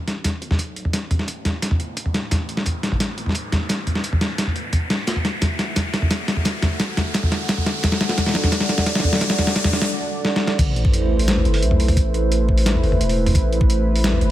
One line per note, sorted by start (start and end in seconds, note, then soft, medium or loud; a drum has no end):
0.00 0.41 A1 loud
0.00 5.04 A3 medium
0.00 5.04 E4 medium
0.00 5.04 B4 medium
0.00 5.04 C5 medium
0.00 riser medium
0.08 snare soft
0.08 closed hi-hat soft
0.24 kick medium
0.24 snare soft
0.24 closed hi-hat medium
0.24 mid tom medium
0.42 0.60 G1 loud
0.42 closed hi-hat soft
0.51 snare soft
0.51 mid tom medium
0.59 0.92 B1 loud
0.59 kick medium
0.59 closed hi-hat medium
0.76 closed hi-hat soft
0.85 mid tom medium
0.93 1.79 A1 loud
0.93 kick medium
0.93 snare medium
0.93 closed hi-hat medium
1.11 closed hi-hat soft
1.11 mid tom medium
1.19 snare soft
1.28 kick medium
1.28 closed hi-hat medium
1.45 snare medium
1.45 closed hi-hat soft
1.45 mid tom medium
1.62 kick medium
1.62 snare medium
1.62 closed hi-hat medium
1.71 mid tom medium
1.80 1.96 G1 medium
1.80 closed hi-hat soft
1.97 2.30 E1 loud
1.97 kick medium
1.97 closed hi-hat medium
2.06 mid tom soft
2.14 snare medium
2.14 closed hi-hat soft
2.31 3.17 A1 loud
2.31 kick medium
2.31 snare medium
2.31 closed hi-hat medium
2.31 mid tom medium
2.49 closed hi-hat soft
2.57 snare medium
2.66 kick medium
2.66 closed hi-hat medium
2.66 mid tom soft
2.83 snare medium
2.83 closed hi-hat soft
2.92 mid tom medium
3.00 kick medium
3.00 snare medium
3.00 closed hi-hat medium
3.18 3.36 G1 loud
3.18 closed hi-hat soft
3.26 snare soft
3.26 mid tom soft
3.32 3.68 B1 loud
3.32 kick loud
3.32 snare soft
3.32 closed hi-hat medium
3.52 snare medium
3.52 closed hi-hat soft
3.52 mid tom medium
3.69 4.54 A1 loud
3.69 kick medium
3.69 snare medium
3.69 closed hi-hat medium
3.87 closed hi-hat soft
3.87 mid tom soft
3.95 snare medium
4.04 kick loud
4.04 closed hi-hat medium
4.13 mid tom medium
4.21 snare medium
4.21 closed hi-hat soft
4.38 kick medium
4.38 snare medium
4.38 closed hi-hat medium
4.47 mid tom soft
4.56 4.72 G1 medium
4.56 closed hi-hat soft
4.73 5.06 E1 loud
4.73 kick loud
4.73 closed hi-hat medium
4.73 mid tom medium
4.90 snare medium
4.90 closed hi-hat soft
5.07 5.92 D2 loud
5.07 10.55 D4 medium
5.07 10.55 A4 medium
5.07 7.80 E5 medium
5.07 10.55 F#5 medium
5.07 kick medium
5.07 snare medium
5.07 closed hi-hat medium
5.16 mid tom soft
5.25 snare medium
5.25 closed hi-hat soft
5.42 kick medium
5.42 snare medium
5.42 closed hi-hat medium
5.42 mid tom medium
5.59 snare medium
5.59 closed hi-hat soft
5.76 kick medium
5.76 snare medium
5.76 closed hi-hat medium
5.76 mid tom soft
5.94 6.12 C2 loud
5.94 snare medium
5.94 closed hi-hat soft
6.02 mid tom medium
6.10 6.44 E2 loud
6.10 kick loud
6.10 snare medium
6.10 closed hi-hat medium
6.28 snare medium
6.28 closed hi-hat soft
6.37 mid tom medium
6.45 7.30 D2 loud
6.45 kick medium
6.45 snare medium
6.45 closed hi-hat medium
6.62 snare medium
6.62 closed hi-hat soft
6.62 mid tom medium
6.80 kick loud
6.80 snare medium
6.80 closed hi-hat medium
6.97 snare medium
6.97 closed hi-hat soft
6.97 mid tom medium
7.14 kick medium
7.14 snare medium
7.14 closed hi-hat medium
7.23 mid tom medium
7.32 7.47 C2 medium
7.32 snare medium
7.32 closed hi-hat soft
7.49 7.82 A1 loud
7.49 kick loud
7.49 snare medium
7.49 closed hi-hat medium
7.58 mid tom soft
7.66 snare medium
7.66 closed hi-hat soft
7.83 8.68 D2 loud
7.83 10.56 D5 medium
7.83 kick medium
7.83 snare medium
7.83 closed hi-hat medium
7.83 mid tom medium
7.92 snare medium
8.01 snare medium
8.01 closed hi-hat soft
8.09 snare medium
8.18 kick loud
8.18 snare medium
8.18 closed hi-hat medium
8.18 mid tom medium
8.26 snare medium
8.29 snare medium
8.31 snare medium
8.34 snare soft
8.34 snare medium
8.34 closed hi-hat soft
8.36 snare soft
8.39 snare soft
8.41 snare soft
8.44 snare medium
8.44 mid tom medium
8.52 kick medium
8.52 snare medium
8.52 closed hi-hat medium
8.61 snare medium
8.69 8.88 C2 loud
8.69 snare loud
8.69 closed hi-hat soft
8.78 snare medium
8.78 mid tom medium
8.86 9.20 E2 loud
8.86 kick loud
8.86 snare loud
8.86 closed hi-hat medium
8.95 snare medium
9.00 snare loud
9.04 closed hi-hat soft
9.04 mid tom medium
9.13 snare medium
9.15 snare medium
9.19 9.90 D2 loud
9.19 kick medium
9.19 snare medium
9.21 snare loud
9.21 closed hi-hat medium
9.24 snare soft
9.27 snare soft
9.30 snare medium
9.39 snare loud
9.39 closed hi-hat soft
9.39 mid tom medium
9.47 snare medium
9.55 kick loud
9.55 snare loud
9.55 closed hi-hat medium
9.64 snare medium
9.64 mid tom medium
9.73 snare loud
9.73 closed hi-hat soft
9.79 snare medium
9.79 closed hi-hat soft
9.84 closed hi-hat soft
10.25 snare medium
10.36 snare medium
10.47 snare loud
10.59 11.44 A1 loud
10.59 14.31 A3 medium
10.59 14.31 E4 medium
10.59 14.31 B4 medium
10.59 14.31 C5 medium
10.59 kick loud
10.59 closed hi-hat medium
10.59 crash loud
10.59 sub drop medium
10.76 closed hi-hat soft
10.85 kick loud
10.94 closed hi-hat medium
11.19 open hi-hat medium
11.28 snare loud
11.28 closed hi-hat medium
11.37 mid tom medium
11.45 11.64 G1 loud
11.45 closed hi-hat soft
11.54 open hi-hat medium
11.62 11.96 B1 loud
11.62 closed hi-hat medium
11.71 mid tom medium
11.80 open hi-hat medium
11.88 mid tom medium
11.88 open hi-hat medium
11.97 12.82 A1 loud
11.97 kick loud
11.97 closed hi-hat medium
12.14 closed hi-hat soft
12.32 closed hi-hat medium
12.49 kick medium
12.58 open hi-hat medium
12.66 snare loud
12.66 closed hi-hat medium
12.75 mid tom medium
12.83 12.99 G1 medium
12.83 open hi-hat soft
12.92 mid tom medium
13.01 13.34 E1 loud
13.01 closed hi-hat medium
13.09 open hi-hat medium
13.26 mid tom medium
13.26 open hi-hat medium
13.35 14.20 A1 loud
13.35 kick loud
13.35 closed hi-hat medium
13.53 closed hi-hat soft
13.61 kick loud
13.70 closed hi-hat medium
13.96 open hi-hat medium
14.04 snare loud
14.04 closed hi-hat medium
14.13 mid tom medium
14.21 14.31 G1 loud
14.21 closed hi-hat soft